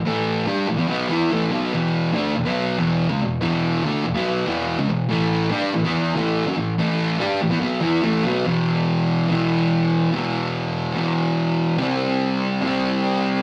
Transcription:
0.05 0.47 A2 loud
0.05 0.46 E3 medium
0.05 0.47 A3 loud
0.46 0.67 G3 loud
0.46 0.68 D4 loud
0.46 0.68 G4 loud
0.67 0.77 A2 medium
0.67 0.76 E3 medium
0.77 0.87 E3 loud
0.77 0.88 B3 loud
0.88 1.08 B2 loud
0.88 1.09 F#3 loud
0.88 1.09 B3 loud
1.09 1.30 E3 medium
1.09 1.31 B3 loud
1.09 1.31 E4 loud
1.31 1.50 A2 loud
1.31 1.51 E3 loud
1.31 1.51 A3 loud
1.50 1.71 B2 medium
1.50 1.72 F#3 loud
1.50 1.73 B3 loud
1.73 2.15 E2 medium
1.73 2.13 B2 loud
1.73 2.14 E3 loud
2.13 2.35 D3 loud
2.13 2.35 A3 loud
2.13 2.36 D4 loud
2.36 2.47 E2 medium
2.36 2.44 B2 medium
2.45 2.77 B2 medium
2.45 2.78 F#3 loud
2.45 2.78 B3 loud
2.78 3.09 E2 loud
2.78 3.09 B2 medium
2.78 3.10 E3 loud
3.09 3.20 C#3 loud
3.09 3.20 G#3 loud
3.21 3.38 E2 medium
3.21 3.38 B2 medium
3.41 3.83 E2 loud
3.41 3.83 B2 medium
3.41 3.83 E3 loud
3.84 4.04 D3 loud
3.84 4.05 A3 loud
3.84 4.05 D4 loud
4.04 4.15 E2 medium
4.04 4.13 B2 medium
4.15 4.45 B2 medium
4.15 4.46 F#3 medium
4.15 4.46 B3 loud
4.46 4.77 E2 loud
4.46 4.77 B2 loud
4.46 4.78 E3 loud
4.78 4.88 C#3 loud
4.78 4.89 G#3 loud
4.88 5.05 E2 medium
4.88 5.05 B2 medium
5.09 5.50 A2 loud
5.09 5.50 E3 loud
5.09 5.51 A3 loud
5.51 5.71 G3 loud
5.51 5.72 D4 loud
5.51 5.72 G4 loud
5.74 5.83 A2 medium
5.74 5.83 E3 medium
5.84 6.14 E3 medium
5.84 6.15 B3 medium
5.84 6.15 E4 loud
6.15 6.45 A2 medium
6.15 6.46 E3 loud
6.15 6.46 A3 loud
6.47 6.56 F#3 medium
6.47 6.57 C#4 loud
6.57 6.73 A2 medium
6.57 6.73 E3 medium
6.78 7.19 A2 medium
6.78 7.19 E3 loud
6.78 7.20 A3 loud
7.19 7.40 G3 loud
7.19 7.40 D4 loud
7.19 7.40 G4 loud
7.41 7.49 A2 medium
7.41 7.49 E3 medium
7.50 7.60 E3 medium
7.50 7.60 B3 loud
7.60 7.81 B2 medium
7.60 7.81 F#3 loud
7.60 7.81 B3 medium
7.81 8.02 E3 medium
7.81 8.02 B3 loud
7.81 8.02 E4 loud
8.02 8.23 A2 medium
8.02 8.23 E3 loud
8.02 8.24 A3 loud
8.23 8.44 B2 medium
8.23 8.44 F#3 loud
8.23 8.45 B3 loud
8.44 9.27 E2 medium
8.44 9.28 B2 loud
8.49 9.31 E3 loud
9.27 10.11 E2 medium
9.27 10.11 B2 medium
9.32 10.15 E3 loud
10.11 10.93 E2 medium
10.11 10.95 B2 medium
10.15 10.97 E3 loud
10.93 11.77 E2 medium
10.93 11.77 B2 medium
10.98 11.79 E3 loud
11.77 12.61 C3 loud
11.77 12.62 G3 loud
11.82 12.63 C4 loud
12.62 13.42 C3 medium
12.62 13.42 G3 medium
12.66 13.42 C4 medium

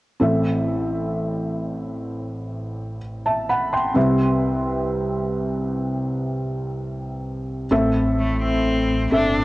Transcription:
0.20 3.92 A1 soft
0.20 3.92 A2 soft
0.20 2.97 C4 soft
0.20 2.98 A4 soft
0.20 2.99 E5 soft
3.26 3.48 E5 soft
3.26 3.48 A5 soft
3.49 3.72 F#5 soft
3.49 3.71 B5 soft
3.73 4.17 G5 soft
3.73 4.17 C6 soft
3.94 7.67 C2 soft
3.94 7.67 C3 soft
3.94 7.66 C4 soft
3.94 7.67 B4 soft
3.94 7.67 E5 soft
7.71 9.08 A1 medium
7.71 9.08 A2 soft
7.71 9.04 C4 medium
7.71 9.05 A4 medium
7.71 9.05 E5 medium
8.20 8.41 A3 medium
8.43 9.08 C4 medium
9.11 9.44 G1 medium
9.11 9.44 C4 soft
9.11 9.44 D4 medium
9.11 9.44 A4 soft
9.11 9.44 E5 medium

